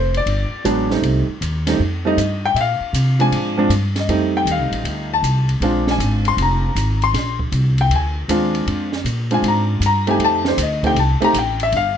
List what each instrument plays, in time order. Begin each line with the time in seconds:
Already playing: upright bass F1, grand piano C5
0.14 grand piano D5, ride
0.26 upright bass G1, ride
0.51 muted upright bass stroke
0.64 upright bass A1, grand piano F#3 G#3 B3 D4, hi-hat pedal, ride
0.91 grand piano G3 A3 C4 D#4, snare
1.02 upright bass C2, ride
1.28 muted upright bass stroke
1.41 upright bass D#2, hi-hat pedal, ride
1.67 grand piano G3 A3 C4 D#4, snare, ride
1.79 upright bass F2
2.05 grand piano G3 A3 C4 D#4 D#5
2.17 upright bass G2, hi-hat pedal, ride
2.45 grand piano G5
2.54 upright bass A#2, grand piano E5, ride
2.61 grand piano F5
2.80 muted upright bass stroke
2.93 upright bass C3, hi-hat pedal, ride
3.19 grand piano F3 G#3 C4 D4 G#5, ride
3.31 upright bass G#2, ride
3.57 grand piano F3 G#3 C4 D4
3.69 upright bass G2, hi-hat pedal, ride
3.96 grand piano D#5, snare, ride
4.08 upright bass F2, grand piano G3 A3 C4 D#4, ride
4.37 grand piano G5
4.45 upright bass D#2, hi-hat pedal, ride
4.51 grand piano F5
4.59 upright bass C2
4.71 upright bass A1, ride
4.84 upright bass D2, ride
5.14 grand piano A5
5.22 upright bass C2, hi-hat pedal, ride
5.49 ride
5.60 upright bass A#1, grand piano G#3 C4 D4 F4, ride
5.87 grand piano G#5, snare
5.98 upright bass G#1, hi-hat pedal, ride
6.25 grand piano C6, ride
6.37 upright bass F1, ride
6.42 grand piano A#5
6.75 upright bass G#1, hi-hat pedal, ride
7.02 grand piano C6, ride
7.14 upright bass A#1, snare, ride
7.39 kick
7.52 upright bass C2, hi-hat pedal, ride
7.78 grand piano G5, ride
7.90 upright bass D2, ride
7.95 grand piano G#5
8.28 upright bass D#2, grand piano G#3 C4 D4 F4, hi-hat pedal, ride
8.55 ride
8.67 upright bass F2, ride
8.92 snare
9.04 upright bass A#2, hi-hat pedal, ride
9.31 grand piano G#3 C4 D4 F4 G#5, ride
9.42 upright bass G#2, ride
9.48 grand piano A#5
9.80 upright bass G2, hi-hat pedal, ride
9.86 grand piano A#5
10.07 grand piano A3 C4 D#4 G4 G#5, ride
10.19 upright bass F2, ride
10.24 grand piano A5
10.45 grand piano C5, snare
10.57 upright bass D2, hi-hat pedal, ride
10.62 grand piano D#5
10.83 grand piano A3 C4 D#4 G4 G5, kick, ride
10.95 upright bass C2, ride
10.99 grand piano A5
11.21 grand piano A3 C4 D#4 G4 A#5, ride
11.34 upright bass A1, hi-hat pedal, ride
11.38 grand piano G5
11.60 grand piano E5, ride
11.72 upright bass G1, ride
11.77 grand piano F5